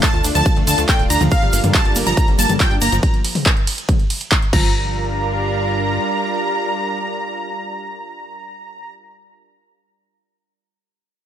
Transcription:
Already playing: analog synth pad A3 D4 F4
0.03 synth pluck A4, digital synth lead A5, supersaw synth A5, kick, clap, closed hi-hat, shaker
0.14 analog synth bass D2, synth pluck F4, closed hi-hat
0.24 analog synth bass D2, synth pluck D4, open hi-hat, ride, shaker
0.35 analog synth bass D2, synth pluck F3, supersaw synth A5, digital synth lead A5, closed hi-hat, shaker
0.46 synth pluck F3, kick, closed hi-hat, shaker
0.56 analog synth bass D2, synth pluck A3, closed hi-hat
0.67 analog synth bass D2, synth pluck D4, digital synth lead A5, supersaw synth A5, open hi-hat, ride, shaker
0.78 analog synth bass D2, synth pluck A3, closed hi-hat, shaker
0.89 synth pluck A4, supersaw synth G5, digital synth lead G5, kick, clap, closed hi-hat, shaker
0.99 analog synth bass D1, synth pluck F4, closed hi-hat
1.10 analog synth bass D2, synth pluck D4, supersaw synth A#5, digital synth lead A#5, open hi-hat, ride, shaker
1.21 analog synth bass D2, synth pluck F3, closed hi-hat, mid tom, shaker
1.31 synth pluck F3, analog synth pad G3 A4 A#4, supersaw synth F5, digital synth lead F5, kick, closed hi-hat, shaker
1.42 analog synth bass G1, synth pluck G3, closed hi-hat
1.53 analog synth bass G1, synth pluck A#3, open hi-hat, ride, shaker
1.63 analog synth bass G2, synth pluck G3, closed hi-hat, mid tom, shaker
1.74 synth pluck F4, digital synth lead A5, supersaw synth A5, kick, clap, closed hi-hat, shaker
1.85 analog synth bass G1, synth pluck D4, closed hi-hat
1.95 analog synth bass G1, synth pluck A#3, open hi-hat, ride, shaker
2.06 analog synth bass G1, synth pluck F3, digital synth lead A#5, supersaw synth A#5, closed hi-hat, shaker
2.17 synth pluck F3, kick, closed hi-hat, shaker
2.28 analog synth bass G1, synth pluck G3, closed hi-hat
2.39 analog synth bass G1, synth pluck A#3, digital synth lead A5, supersaw synth A5, open hi-hat, ride, shaker
2.49 analog synth bass G1, synth pluck G3, closed hi-hat, mid tom, shaker
2.60 synth pluck F4, supersaw synth G5, digital synth lead G5, kick, clap, closed hi-hat, shaker
2.71 analog synth bass G2, synth pluck D4, closed hi-hat
2.81 analog synth bass G1, synth pluck A#3, supersaw synth A#5, digital synth lead A#5, open hi-hat, ride, shaker
2.92 analog synth bass G1, synth pluck F3, closed hi-hat, shaker
3.03 kick, closed hi-hat
3.14 closed hi-hat
3.25 open hi-hat, ride
3.35 open hi-hat, mid tom
3.46 kick, clap, closed hi-hat
3.57 closed hi-hat
3.67 open hi-hat, ride
3.78 closed hi-hat
3.89 kick, closed hi-hat, mid tom
4.00 closed hi-hat
4.10 open hi-hat, ride
4.21 closed hi-hat
4.32 kick, clap, closed hi-hat
4.42 closed hi-hat
4.53 analog synth bass G1, synth pluck F3, analog synth pad G3 D4 F4 A#4, digital synth lead A#5, supersaw synth A#5, kick, crash

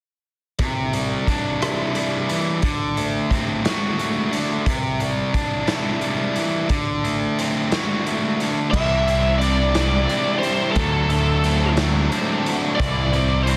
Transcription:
0.59 distorted electric guitar C3, kick, closed hi-hat
0.93 distorted electric guitar G3, closed hi-hat
1.27 distorted electric guitar D4, kick, closed hi-hat
1.60 distorted electric guitar E4, cross-stick, closed hi-hat
1.95 distorted electric guitar G3, closed hi-hat
2.29 distorted electric guitar E3, closed hi-hat
2.62 distorted electric guitar D3, kick, closed hi-hat
2.97 distorted electric guitar A3, closed hi-hat
3.30 distorted electric guitar C4, kick, closed hi-hat
3.64 distorted electric guitar F#4, snare, closed hi-hat
3.98 distorted electric guitar A3, closed hi-hat
4.31 distorted electric guitar D3, closed hi-hat
4.66 distorted electric guitar C3, kick, closed hi-hat
5.00 distorted electric guitar G3, closed hi-hat
5.33 distorted electric guitar D4, kick, closed hi-hat
5.67 distorted electric guitar E4, snare, closed hi-hat
6.01 distorted electric guitar G3, closed hi-hat
6.36 distorted electric guitar E3, closed hi-hat
6.69 distorted electric guitar D3, kick, closed hi-hat
7.04 distorted electric guitar A3, closed hi-hat
7.38 distorted electric guitar C4, closed hi-hat
7.72 distorted electric guitar F#4, snare, closed hi-hat
8.06 distorted electric guitar A3, closed hi-hat
8.40 distorted electric guitar D3, closed hi-hat
8.71 picked electric bass C2, distorted electric guitar C3 G3, overdriven electric guitar E3, lead electric guitar E5, kick, crash
8.76 distorted electric guitar C4 E4 G4
9.07 overdriven electric guitar C4, distorted electric guitar C4 E4 G4, closed hi-hat
9.38 distorted electric guitar G3 C4, overdriven electric guitar D4, lead electric guitar D5, closed hi-hat
9.43 distorted electric guitar E4 G4
9.74 distorted electric guitar C3 G3 C4 E4 G4, overdriven electric guitar E3, snare, closed hi-hat
10.08 distorted electric guitar G3 C4 E4 G4, overdriven electric guitar D4, closed hi-hat
10.39 overdriven electric guitar G4, lead electric guitar C5
10.43 closed hi-hat
10.72 picked electric bass D2, overdriven electric guitar F#3, lead electric guitar A4, closed hi-hat
10.76 distorted electric guitar D3 F#3 A3 D4, kick
11.09 overdriven electric guitar A3, distorted electric guitar A3 D4, closed hi-hat
11.13 distorted electric guitar F#3
11.43 distorted electric guitar D3 F#3 A3 D4, overdriven electric guitar C4, closed hi-hat
11.76 distorted electric guitar D3 F#3 A3 D4, overdriven electric guitar F#3, snare, closed hi-hat
12.10 distorted electric guitar D3 F#3 A3 D4, overdriven electric guitar C4, closed hi-hat
12.45 overdriven electric guitar F#4, closed hi-hat
12.75 distorted electric guitar C3 G3, overdriven electric guitar E3, lead electric guitar D5
12.80 picked electric bass C2, distorted electric guitar C4 E4, kick, closed hi-hat
13.12 distorted electric guitar G3 C4 E4, overdriven electric guitar C4, closed hi-hat
13.43 distorted electric guitar C3, lead electric guitar C5, closed hi-hat
13.48 distorted electric guitar G3 C4 E4, overdriven electric guitar D4

